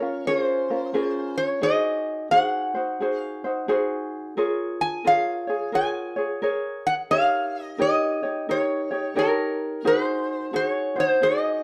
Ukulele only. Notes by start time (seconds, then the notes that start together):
0.00 C#4 F4 A#4
0.27 C#4 F4 G#4 A#4
0.70 C#4 F4 A#4
0.94 C#4 F4 G#4 A#4
1.62 D#4 F#4 G#4 C5
2.31 D#4 F#4 G#4 C5
2.75 D#4 F#4 C5
3.00 D#4 F#4 G#4 C5
3.44 D#4 F#4 C5
3.68 D#4 F#4 G#4 C5
4.37 F4 G#4 A#4 C#5
5.05 F4 G#4 A#4 C#5
5.47 F4 G#4 C#5
5.72 F4 G#4 A#4 C#5
6.16 F4 G#4 C#5
6.42 G#4 A#4 C#5
7.11 D#4 G4 A#4 C#5
7.78 D#4 G4 A#4 C#5
8.23 D#4 G4 C#5
8.49 D#4 G4 A#4 C#5
8.91 D#4 G4 C#5
9.15 D#4 G4 A#4 C#5
9.85 D#4 F#4 G#4 C5
10.53 D#4 F#4 G#4
10.96 D#4 F#4 C5
11.22 D#4 F#4 G#4 C5